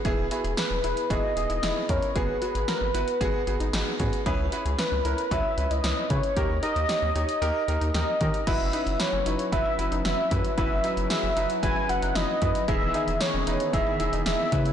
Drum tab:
CC |----------------|----------------|----------------|----------------|
HH |x-xxx-xxx-xxx-xx|x-xxx-xxx-xxx-xx|x-xxx-xxx-xxx-xx|x-xxx-xxx-xxx-xx|
SD |----o-------o---|----o-------o---|----o-------o---|----o-------o---|
BD |o-------o-----o-|o-------o-----o-|o-------o-----o-|o-------------o-|

CC |x---------------|----------------|----------------|
HH |x-xxx-xxx-xxx-xx|x-xxx-xxx-xxx-xx|x-xxx-xxx-xxx-xx|
SD |----o-------o---|----o-------o---|----o-------o---|
BD |o-------o-----o-|o-------o-----o-|o-------o-----o-|